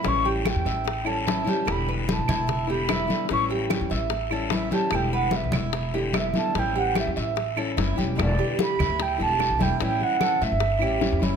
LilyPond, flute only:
\new Staff \with { instrumentName = "Flute" } { \time 4/4 \key e \dorian \tempo 4 = 148 cis'''8 r8 g''4. a''4. | b''8 r8 a''4. b''4. | cis'''8 r2 r8 e''8 a''8 | g''8 fis''8 e''8 r4. e''8 a''8 |
g''8 fis''8 e''8 r2 r8 | d''4 b''4 g''8 a''4 g''8 | g''8 fis''4 e''2 r8 | }